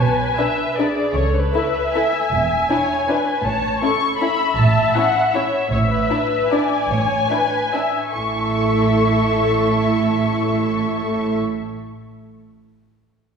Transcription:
0.00 B1 B2 B4 G#5
0.38 D4 B4 E5
0.78 D4 G#4 B4 D5
1.15 C#2 C#3 A4 C#5
1.34 B4
1.54 E4 A4 E5
1.95 E4 A4 G#5
2.32 E1 E2
2.70 D4 E4 C#5
3.08 D4 E4 B4
3.44 A1 A2 C#5 A5
3.82 C#4 E4 A4 C#6
4.20 C#4 E4 E5 B5
4.57 A1 A2 A5
4.96 C#4 E4 F#5
5.34 C#4 E4 C#5 E5
5.71 A1 A2 C#5 E5
5.89 B4
6.10 D4 E4
6.51 D4 E4 D5 G#5
6.89 A1 A2 C#5
7.30 D4 E4 B4
7.72 D4 E4 E5
8.14 A1 A2 A3 E4 A4 E5 C#6

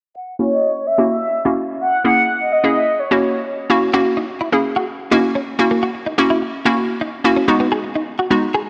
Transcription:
0.16 F#5
0.39 A#3 C#4 E4 F#4 C#5
0.51 D#5
0.87 E5
0.98 A#3 C#4 E4 F#4
1.10 E5
1.45 A#3 C#4 E4 F#4
1.81 F#5
2.04 A#3 C#4 E4 G#4 F#5
2.40 D#5
2.52 D#5
2.63 A#3 C#4 E4 G#4
2.76 E5
2.99 C#5
3.11 A#3 C#4 E4 F#4
3.70 A#3 C#4 E4 F#4
3.93 A#3 C#4 E4 F#4
4.05 muted clean electric guitar stroke
4.17 D#4
4.41 E4
4.52 A#3 C#4 E4 G#4, muted clean electric guitar stroke
4.76 F#4
5.11 A#3 C#4 D#4 E4 F#4
5.35 C#4
5.59 A#3 C#4 E4 F#4, muted clean electric guitar stroke
5.71 A#3
5.83 F#4
5.95 muted clean electric guitar stroke
6.06 D#4
6.18 A#3 C#4 E4 F#4
6.30 E4
6.42 muted clean electric guitar stroke
6.65 A#3 C#4 E4 F#4
7.01 D#4
7.24 A#3 C#4 E4 F#4
7.36 C#4
7.48 G#3 B3 D#4 F#4, muted clean electric guitar stroke
7.60 B3
7.72 G#4
7.84 muted clean electric guitar stroke
7.96 D#4
8.19 F#4
8.31 G#3 B3 D#4 F#4, muted clean electric guitar stroke
8.54 G#4

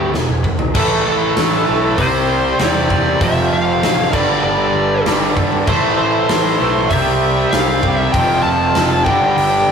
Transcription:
Already playing: D2 E2 B2 E3
0.13 E1 E2 B2, snare
0.29 mid tom
0.44 G#1 E2 B2, kick
0.59 floor tom
0.74 A1 A2 E3 A3 E4 A4 B4, kick, crash
1.06 A1 A4
1.36 A1, snare, open hi-hat
1.66 B1 A2 E3 A3
1.97 C2 C3 G3 C4 G4 C5 D5, kick, open hi-hat
2.59 E2 D5, snare, open hi-hat
2.90 C3 G3 C4, kick
3.20 F1 F2 C3 F3 C4 E5, kick, open hi-hat
3.52 F1 F5
3.82 A1, snare, open hi-hat
4.12 G1 G2 D3 G3 D4 A4 D5, kick, crash
4.44 G1 D5
4.74 G1
5.05 G1 G2 D3 G3, snare, open hi-hat
5.37 G#1, kick
5.66 A1 A2 E3 A3 E4 C5, kick, crash
5.98 A1 C5
6.29 A1, snare, open hi-hat
6.59 B1 A2 E3 A3
6.90 C2 C3 G3 C4 G4 D5 E5, kick, open hi-hat
7.50 C2 F5, snare, open hi-hat
7.83 C3 G3 C4, kick
7.96 E5
8.12 F1 F2 C3 F3 G5, kick, open hi-hat
8.43 F1 A5
8.75 F1, snare, open hi-hat
9.04 G1 G2 D3 G3 D4 A4 G5, kick
9.37 G1 G5, open hi-hat
9.68 G1

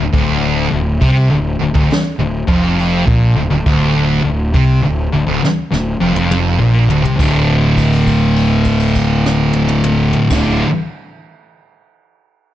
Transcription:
Already playing: D2
0.00 D1
0.13 D1 D2, kick, open hi-hat
0.71 D1 D2
1.01 C2 C3, kick, open hi-hat
1.31 D1 D2
1.61 D1 D2
1.75 D1 D2, kick
1.90 muted fingered electric bass stroke, muted distorted electric guitar stroke, snare, open hi-hat
2.18 D1 D2
2.47 F1 F2, kick
2.79 open hi-hat
3.06 A#1 A#2, kick
3.36 D1 D2
3.50 D1 D2
3.66 D1 D2, kick, open hi-hat
4.23 D1 D2
4.54 C2 C3, kick, open hi-hat
4.82 D1 D2
5.12 D1 D2
5.27 D1 D2
5.42 muted distorted electric guitar stroke, muted fingered electric bass stroke, snare
5.71 D1 D2, snare
6.00 F1 F2
6.14 F1 F2, high tom
6.31 mid tom
6.59 A#1 A#2
6.89 D1 D2, floor tom
7.03 C2 C3, floor tom
7.17 D1 D2 A2, kick, crash
7.21 D3
7.77 kick, crash
7.92 crash
8.07 kick, crash
8.36 crash
8.65 kick, crash
8.80 crash
8.95 kick, crash
9.26 snare
9.53 high tom
9.68 mid tom
9.84 mid tom
10.13 floor tom
10.30 D1 D2 A2, kick, snare, crash
10.35 D3

